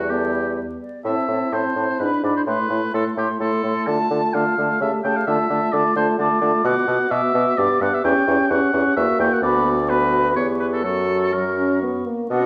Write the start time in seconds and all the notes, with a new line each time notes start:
Already playing: E2 G3 F#4
0.09 B3 G4 A4
0.33 B4
0.81 D5
1.04 A2 C4 E4 E5 A5
1.28 A2 C4 E4 A5
1.52 A2 C4 E4 C5 A5
1.76 A2 C4 E4 A5
1.99 G#2 D4 E4 B4 B5
2.23 G#2 D4 E4 D5 B5
2.37 C5
2.47 A2 A3 E4 B4 C6
2.70 A2 A3 E4 C6
2.93 A2 A3 E4 A4 C6
3.16 A2 A3 E4 G4 C6
3.40 A2 A3 E4 A4 C6
3.63 A2 A3 E4 C6
3.87 D3 A3 F4 A5
4.11 D3 A3 F4 A5
4.33 D3 A3 F4 F5 A5
4.58 D3 A3 F4 A5
4.80 C#3 A3 G4 E5 A5
5.04 C#3 A3 G4 G5 A5
5.16 F5
5.27 D3 A3 F4 E5 A5
5.49 D3 A3 F4 A5
5.72 D3 A3 F4 D5 A5
5.96 D3 A3 F4 C5 A5
6.18 D3 A3 F4 D5 A5
6.41 D3 A3 F4 A5
6.64 B2 B3 F#4 F#5 D6
6.87 B2 B3 F#4 D6
7.11 B2 B3 F#4 E5 D6
7.34 B2 B3 F#4 D6
7.58 G2 B3 G4 D5 D6
7.81 G2 B3 G4 F#5 D6
7.94 E5
8.04 E2 C#4 G4 G5 C#6
8.27 E2 C#4 G4 C#6
8.50 E2 C#4 G4 F#5 C#6
8.73 E2 C#4 G4 C#6
8.96 E2 A#3 F#4 E5 C#6
9.19 E2 A#3 F#4 G5 C#6
9.33 F#5
9.42 D2 B3 F#4 D5 B5
9.89 B3 F#4 B4 B5
10.35 E2 B3 G4 C#5 C#6
10.60 B4
10.73 A4
10.84 F#2 F#3 F#4 A4 C#6
11.33 F#3 F#4 A#4 C#6
11.58 C#4
11.82 B3
12.07 A#3
12.30 B2 B3 D4 F#4 F#5
12.42 D4